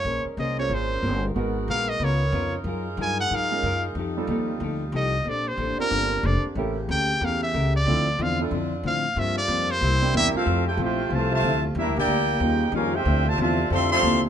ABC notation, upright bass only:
X:1
M:4/4
L:1/8
Q:"Swing" 1/4=185
K:F
V:1 name="Upright bass" clef=bass
B,,, z C,,2 _A,,,2 G,,,2 | _A,,,2 B,,,2 _D,,2 F,,2 | _G,,2 =G,,2 _A,,2 _G,,2 | F,,2 _E,,2 D,,2 C,,2 |
B,,,2 A,,, z G,,,2 F,,, z | A,,,2 D,,2 E,,2 ^C,,2 | D,,2 E,,2 F,,2 A,,2 | G,,2 F,,2 C,,2 E,, z |
F,,2 B,,,2 C,,2 D,,2 | (3E,, D,, B,,, D,,2 _E,,2 F,,2 | D,,2 E,,2 F,,2 _E,,2 |]